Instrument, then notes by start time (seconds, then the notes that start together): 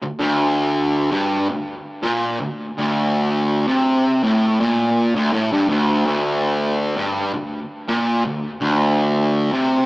distorted electric guitar
0.03 D2
0.19 D2
1.11 G2
1.49 D2
2.03 A#2
2.41 D2
2.78 D2
3.68 C3
4.23 A2
4.60 A#2
5.16 D2
5.33 A2
5.52 G2
5.69 D2
6.06 D2
6.97 G2
7.34 D2
7.89 A#2
8.25 D2
8.61 D2
9.52 C3